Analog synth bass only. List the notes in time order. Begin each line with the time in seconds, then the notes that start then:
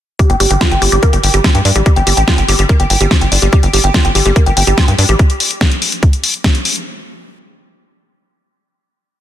0.30 G1
0.40 G1
0.51 G1
0.71 G1
0.82 G1
0.92 G1
1.13 G1
1.24 G1
1.34 G1
1.55 G2
1.65 G2
1.76 A1
1.96 G1
2.07 G1
2.17 A1
2.38 G1
2.48 G1
2.59 G1
2.80 G1
2.90 G1
3.01 G1
3.21 G1
3.32 G1
3.42 G1
3.63 G1
3.73 G1
3.84 G1
4.05 G1
4.15 G1
4.26 G1
4.46 G1
4.57 G1
4.67 G1
4.88 G2
4.99 G2
5.09 A1